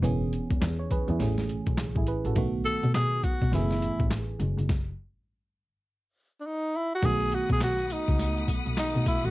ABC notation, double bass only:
X:1
M:4/4
L:1/16
Q:"Swing 16ths" 1/4=103
K:Bmix
V:1 name="Double bass" clef=bass
E,,, z E,, E,, E,, z E,, E,, A,,,2 B,,, B,,, A,,, A,,, z A,,, | B,,, z B,, B,, B,, z B,, B,, F,,,2 A,,, A,,, z2 F,,, F,,, | z16 | B,,, z B,, B,, B,,,2 z C,, z2 B,,, B,,, z B,, z A,,, |]